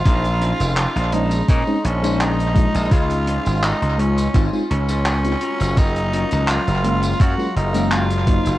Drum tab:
HH |xxxxxxxxx-xxxxxx|xxxxxxxxx-xxxxxx|xxxxxxxxx-xxxxxx|
TB |xx-xxx-xxx-xxx-x|xx-xxx-xxx-xxx-x|xx-xxx-xxx-xxx-x|
CP |----x-------x---|----x-------x---|----x-------x---|
BD |o-------o-----o-|o-------o-------|o-------o-----o-|